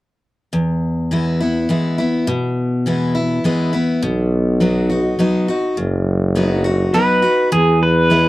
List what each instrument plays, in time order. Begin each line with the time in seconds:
0.53 steel-string acoustic guitar E2
1.11 steel-string acoustic guitar E3 G#3 B3 E4
1.40 steel-string acoustic guitar B3 E4
1.69 steel-string acoustic guitar E3 G#3 B3 E4
1.98 steel-string acoustic guitar B3 E4
2.27 steel-string acoustic guitar B2
2.86 steel-string acoustic guitar E3 G#3 B3 E4
3.15 steel-string acoustic guitar B3 E4
3.44 steel-string acoustic guitar E3 G#3 B3 E4
3.73 steel-string acoustic guitar B3 E4
4.02 tuba B1, steel-string acoustic guitar B2
4.60 steel-string acoustic guitar F#3 B3 D#4 F#4
4.90 steel-string acoustic guitar D#4 F#4
5.19 steel-string acoustic guitar F#3 B3 D#4 F#4
5.48 steel-string acoustic guitar D#4 F#4
5.77 tuba F#1, steel-string acoustic guitar F#2
6.35 steel-string acoustic guitar F#3 B3 D#4 F#4
6.64 steel-string acoustic guitar D#4 F#4
6.94 steel-string acoustic guitar F#3 B3 D#4 F#4, pedal steel guitar B4
7.22 steel-string acoustic guitar D#4 F#4
7.52 steel-string acoustic guitar E2, tuba E2, pedal steel guitar G#4
7.83 pedal steel guitar B4
8.10 steel-string acoustic guitar E3 G#3 B3 E4